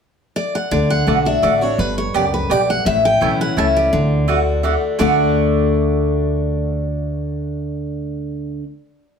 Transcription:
0.36 steel-string acoustic guitar D5
0.55 steel-string acoustic guitar F#5
0.71 upright bass D2, steel-string acoustic guitar D3 D5
0.90 steel-string acoustic guitar F#5
1.07 upright bass B1, steel-string acoustic guitar D3 A3 D4 F#4, mandolin A3 F#4 D5 F#5
1.25 steel-string acoustic guitar D4 F#4 E5
1.42 upright bass A1, steel-string acoustic guitar D3 A3 D4 F#4 D5, mandolin A3 F#4 D5 F#5
1.61 steel-string acoustic guitar D4 F#4 C#5
1.78 upright bass G1, steel-string acoustic guitar G2 B4
1.98 steel-string acoustic guitar C#5
2.14 upright bass C#2, steel-string acoustic guitar F#2 D5, mandolin B3 G4 D5 G5
2.34 steel-string acoustic guitar B4
2.49 upright bass B1, steel-string acoustic guitar G2 D5, mandolin B3 G4 D5 G5
2.70 steel-string acoustic guitar F#5
2.85 upright bass A1, steel-string acoustic guitar A2 E5
3.05 steel-string acoustic guitar G5
3.21 upright bass B1, steel-string acoustic guitar E3 A3 C#4 E4, mandolin A3 E4 C#5 A5
3.41 steel-string acoustic guitar F#5
3.57 upright bass C#2, steel-string acoustic guitar E3 A3 C#4 E4 E5, mandolin A3 E4 C#5 A5
3.77 steel-string acoustic guitar D5
3.93 upright bass D2, steel-string acoustic guitar D3
4.28 steel-string acoustic guitar D3 A3 D4 F#4, mandolin A3 F#4 D5 F#5
4.63 steel-string acoustic guitar D3 A3 D4 F#4, mandolin A3 F#4 D5 F#5
4.98 upright bass D2, steel-string acoustic guitar D3 A3 D4 F#4 D5, mandolin A3 F#4 D5 F#5

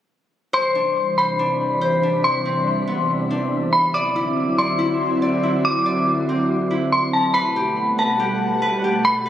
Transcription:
0.53 analog synth pad C3 E3 G3 D4, synth texture C4 D4 E5 B6, harp C5, synth bell C6
0.75 harp D4
1.18 harp C5, synth bell B5
1.39 harp D4
1.81 harp C5
2.03 harp D4
2.24 synth bell C6
2.45 harp C4
2.87 harp B3
3.31 harp D4
3.73 synth bell B5
3.94 analog synth pad D3 F#3 C4 E4, synth texture F#4 D5 C6, harp D5, synth bell D6
4.16 harp E4
4.58 harp D5, synth bell C6
4.79 harp E4
5.22 harp D5
5.43 harp E4
5.65 synth bell D6
5.86 harp D5
6.29 harp C4
6.71 harp E4
6.92 synth bell C6
7.13 synth bell A5
7.34 analog synth pad B2 G3 A3 F#5, synth texture G4 B4 F#5 A5, harp B4, synth bell B5
7.56 harp G4
7.98 harp B4, synth bell A5
8.20 harp G4
8.62 harp B4
8.84 harp G4
9.05 synth bell B5
9.26 harp B4

